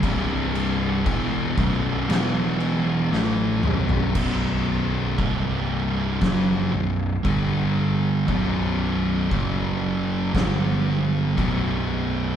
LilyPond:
<<
  \new Staff \with { instrumentName = "Distorted electric guitar" } { \clef bass \time 4/4 \key b \minor \tempo 4 = 58 <c, g, c>4 <e, b, e>8 <b,, fis, b,>8 <e, b, e>4 <a, e a>8 <b,, fis, b,>8 | <b,, fis, b,>4 <c, g, c>4 <fis, cis fis>8 <b,, fis,>8 <g, d g>4 | <b,, fis, b,>4 <fis, cis fis>4 <g, d g>4 <b,, fis, b,>4 | }
  \new Staff \with { instrumentName = "Distorted electric guitar" } { \clef bass \time 4/4 \key b \minor <c, g, c>4 <e, b, e>8 <b,, fis, b,>8 <e, b, e>4 <a, e a>8 <b,, fis, b,>8 | <b,, fis, b,>4 <c, g, c>4 <fis, cis fis>8 <b,, fis,>8 <g, d g>4 | <b,, fis, b,>4 <fis, cis fis>4 <g, d g>4 <b,, fis, b,>4 | }
  \new Staff \with { instrumentName = "Picked electric bass" } { \clef bass \time 4/4 \key b \minor c,,4 e,,8 b,,,8 e,,4 a,,8 b,,,8 | b,,,4 c,,4 fis,,8 b,,,8 g,,4 | b,,,4 fis,,4 g,,4 b,,,4 | }
  \new DrumStaff \with { instrumentName = "Drums" } \drummode { \time 4/4 <cymc bd>8 cymc8 <cymc bd>8 <cymc bd sn>8 <cymc sn>8 cymc8 sn8 toml16 tomfh16 | <cymc bd>4 <cymc bd>4 <cymc bd sn>4 <cymc bd>4 | <cymc bd>4 <cymc bd>4 <cymc bd sn>4 <cymc bd>4 | }
>>